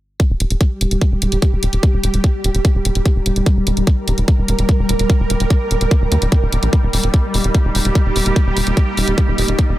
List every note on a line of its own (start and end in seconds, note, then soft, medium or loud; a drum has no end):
0.20 9.79 G3 medium
0.20 9.79 A#3 medium
0.20 3.48 G4 medium
0.20 kick loud
0.20 closed hi-hat medium
0.30 0.36 D#1 medium
0.40 0.46 D#1 medium
0.40 closed hi-hat medium
0.50 0.56 D#1 medium
0.50 closed hi-hat medium
0.55 9.79 D#4 medium
0.55 9.79 D#5 medium
0.61 kick loud
0.61 closed hi-hat medium
0.81 0.87 D#1 medium
0.81 closed hi-hat medium
0.91 0.97 D#1 medium
0.91 closed hi-hat medium
1.01 kick loud
1.01 closed hi-hat medium
1.12 1.18 D#1 medium
1.22 1.28 D#1 medium
1.22 closed hi-hat loud
1.32 1.38 D#1 medium
1.32 closed hi-hat medium
1.42 kick loud
1.42 closed hi-hat medium
1.49 1.58 D#1 medium
1.49 8.04 A#5 medium
1.63 1.69 D#1 medium
1.63 closed hi-hat loud
1.73 1.79 D#1 medium
1.73 closed hi-hat medium
1.83 kick loud
1.83 closed hi-hat medium
1.93 1.99 D#1 medium
2.03 2.10 D#1 medium
2.03 closed hi-hat medium
2.14 2.20 D#1 medium
2.14 closed hi-hat medium
2.24 kick loud
2.24 closed hi-hat medium
2.44 2.50 D#1 medium
2.44 closed hi-hat medium
2.54 2.61 D#1 medium
2.54 closed hi-hat medium
2.65 kick loud
2.65 closed hi-hat medium
2.75 2.81 D#1 medium
2.85 2.91 D#1 medium
2.85 closed hi-hat medium
2.95 3.01 D#1 medium
2.95 closed hi-hat medium
3.06 kick loud
3.06 closed hi-hat medium
3.16 3.22 D#1 medium
3.26 3.32 D#1 medium
3.26 closed hi-hat loud
3.36 3.42 D#1 medium
3.36 closed hi-hat medium
3.46 6.75 A#4 medium
3.46 kick loud
3.46 closed hi-hat medium
3.57 3.63 D#1 medium
3.67 3.73 D#1 loud
3.67 closed hi-hat medium
3.77 3.83 D#1 medium
3.77 closed hi-hat medium
3.87 kick loud
3.87 closed hi-hat medium
4.08 4.14 D#1 loud
4.08 closed hi-hat medium
4.18 4.24 D#1 medium
4.18 closed hi-hat medium
4.28 kick loud
4.28 closed hi-hat medium
4.38 4.44 D#1 medium
4.48 4.54 D#1 medium
4.48 closed hi-hat medium
4.59 4.65 D#1 medium
4.59 closed hi-hat medium
4.69 kick loud
4.69 closed hi-hat medium
4.79 4.85 D#1 medium
4.89 4.95 D#1 loud
4.89 closed hi-hat medium
4.99 5.05 D#1 medium
4.99 closed hi-hat medium
5.10 kick loud
5.10 closed hi-hat medium
5.20 5.26 D#1 medium
5.30 5.36 D#1 loud
5.30 closed hi-hat medium
5.40 5.46 D#1 medium
5.40 closed hi-hat medium
5.50 kick loud
5.50 closed hi-hat medium
5.71 5.77 D#1 medium
5.71 closed hi-hat medium
5.81 5.87 D#1 medium
5.81 closed hi-hat medium
5.91 kick loud
5.91 closed hi-hat medium
6.01 6.08 D#1 medium
6.12 6.18 D#2 medium
6.12 closed hi-hat medium
6.22 6.28 D#1 medium
6.22 closed hi-hat medium
6.32 kick loud
6.32 closed hi-hat medium
6.42 6.48 D#1 medium
6.52 6.59 D#1 medium
6.52 closed hi-hat medium
6.63 6.69 A#1 medium
6.63 closed hi-hat medium
6.73 9.79 G4 medium
6.73 kick loud
6.73 closed hi-hat medium
6.83 6.89 D#1 medium
6.93 6.99 D#1 medium
6.93 open hi-hat loud
7.04 7.10 D#1 medium
7.04 closed hi-hat medium
7.14 kick loud
7.14 closed hi-hat medium
7.34 7.40 D#1 medium
7.34 open hi-hat loud
7.44 7.50 D#1 medium
7.44 closed hi-hat medium
7.54 kick loud
7.54 closed hi-hat medium
7.65 7.71 D#1 medium
7.75 7.81 D#1 medium
7.75 open hi-hat loud
7.85 7.91 D#1 medium
7.85 closed hi-hat medium
7.95 kick loud
7.95 closed hi-hat medium
8.02 8.12 D#1 medium
8.02 9.79 D#6 medium
8.16 8.22 D#1 medium
8.16 open hi-hat loud
8.26 8.32 D#1 medium
8.26 closed hi-hat medium
8.36 kick loud
8.36 closed hi-hat medium
8.46 8.52 D#1 medium
8.57 8.63 D#1 loud
8.57 open hi-hat loud
8.67 8.73 D#1 medium
8.67 closed hi-hat medium
8.77 kick loud
8.77 closed hi-hat medium
8.97 9.03 D#1 loud
8.97 open hi-hat loud
9.08 9.14 D#1 medium
9.08 closed hi-hat medium
9.18 kick loud
9.18 closed hi-hat medium
9.28 9.34 D#1 medium
9.38 9.44 D#1 medium
9.38 open hi-hat loud
9.48 9.54 D#1 medium
9.48 closed hi-hat medium
9.59 kick loud
9.59 closed hi-hat medium
9.69 9.75 D#1 medium